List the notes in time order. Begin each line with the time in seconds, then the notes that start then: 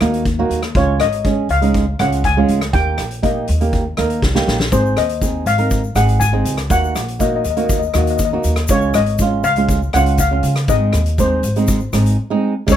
Already playing: D#5
0.00 D#2 A#3 D#4 F#4, cross-stick, closed hi-hat
0.14 closed hi-hat
0.25 kick, closed hi-hat
0.39 A#3 D#4 F#4
0.50 D#2, closed hi-hat
0.63 cross-stick, closed hi-hat
0.75 C#2 G#3 C#4 F4 C#5, kick, closed hi-hat
1.00 G#1 D#5, cross-stick, closed hi-hat
1.12 closed hi-hat
1.24 G#3 C#4 G#4, kick, closed hi-hat
1.49 C#2 F5, closed hi-hat
1.62 G#3 C#4 D#4, closed hi-hat
1.74 kick, closed hi-hat
1.99 C#2 G#3 C#4 F4 F#5, cross-stick, closed hi-hat
2.12 closed hi-hat
2.24 G#5, kick, closed hi-hat
2.37 G#3 C#4 F4
2.48 C#2, closed hi-hat
2.61 cross-stick, closed hi-hat
2.73 D#2 A#3 D#4 G4 G5, kick, closed hi-hat
2.98 A#1, cross-stick, closed hi-hat
3.11 closed hi-hat
3.22 A#3 D#4 G4 D#5, kick, closed hi-hat
3.48 D#2, closed hi-hat
3.61 A#3 D#4 G4, closed hi-hat
3.73 kick, closed hi-hat
3.97 D#2 A#3 D#4 A#4, cross-stick, closed hi-hat
4.10 closed hi-hat
4.22 C2, kick, snare
4.35 A#3 D#4 G4, snare
4.48 A#1, snare
4.60 snare
4.72 G#1 C4 D#4 G#4 C5, kick, closed hi-hat, shaker
4.86 shaker
4.97 D#2 D#5, cross-stick, closed hi-hat
5.09 closed hi-hat
5.21 C4 D#4 G#4, kick, closed hi-hat, shaker
5.46 G#1 F5, closed hi-hat, shaker
5.58 C4 D#4 A#4, closed hi-hat
5.70 kick, closed hi-hat, shaker
5.84 shaker
5.95 G#1 C4 D#4 G#4 F#5, cross-stick, closed hi-hat, shaker
6.08 closed hi-hat, shaker
6.20 G#5, kick, closed hi-hat, shaker
6.33 C4 D#4 G#4
6.45 C#2, closed hi-hat, shaker
6.58 cross-stick, closed hi-hat, shaker
6.70 D#2 A#3 D#4 F#4 F#5, kick, closed hi-hat, shaker
6.84 shaker
6.95 A#1, cross-stick, closed hi-hat, shaker
7.08 closed hi-hat
7.19 A#3 D#4 F#4 D#5, kick, closed hi-hat, shaker
7.36 D#5
7.44 D#2 D#5, closed hi-hat, shaker
7.50 D#5
7.57 A#3 D#4 F#4, closed hi-hat
7.64 D#5
7.69 D#5, kick, closed hi-hat, shaker
7.79 D#5, shaker
7.87 D#5
7.94 D#2 A#3 D#4 F#4 D#5, cross-stick, closed hi-hat, shaker
8.04 D#5, closed hi-hat, shaker
8.10 D#5
8.17 D#5, kick, closed hi-hat, shaker
8.25 D#5
8.32 A#3 D#4 F#4
8.44 D#2, closed hi-hat, shaker
8.56 cross-stick, closed hi-hat, shaker
8.68 C#2 G#3 C#4 F4 C#5, kick, closed hi-hat, shaker
8.81 shaker
8.94 G#1 D#5, cross-stick, closed hi-hat, shaker
9.06 closed hi-hat
9.18 G#3 C#4 F4, kick, closed hi-hat, shaker
9.43 C#2 F5, closed hi-hat, shaker
9.56 G#3 C#4 F4, closed hi-hat
9.68 kick, closed hi-hat, shaker
9.82 shaker
9.93 C#2 G#3 C#4 F4 F#5, cross-stick, closed hi-hat, shaker
10.06 closed hi-hat, shaker
10.17 F5, kick, closed hi-hat, shaker
10.31 G#3 C#4 F4
10.43 C#3, closed hi-hat, shaker
10.56 cross-stick, closed hi-hat, shaker
10.68 G#1 G#3 C4 D#4 D#5, kick, closed hi-hat, shaker
10.93 D#2, cross-stick, closed hi-hat, shaker
11.06 closed hi-hat
11.18 G#3 C4 D#4 C5, kick, closed hi-hat, shaker
11.43 G#1, closed hi-hat, shaker
11.56 G#3 C4 D#4, closed hi-hat, shaker
11.67 kick, closed hi-hat, shaker
11.80 shaker
11.93 G#1 G#3 C4 D#4, cross-stick, closed hi-hat, shaker
12.05 closed hi-hat, shaker
12.30 G#3 C4 D#4
12.67 C#2 G#3 C#4 D#4 G#4, kick, crash, shaker
12.72 C#5